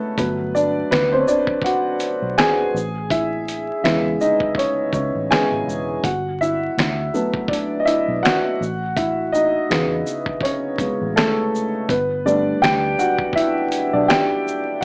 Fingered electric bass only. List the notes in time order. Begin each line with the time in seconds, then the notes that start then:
0.18 G1
0.92 D2
2.22 B1
2.74 A1
3.84 E2
4.93 C#2
5.15 A1
5.52 G#1
5.67 E1
6.04 G1
6.78 D2
8.08 B1
8.61 A1
9.71 E2
11.01 A1
11.89 G1
12.63 D2
13.94 B1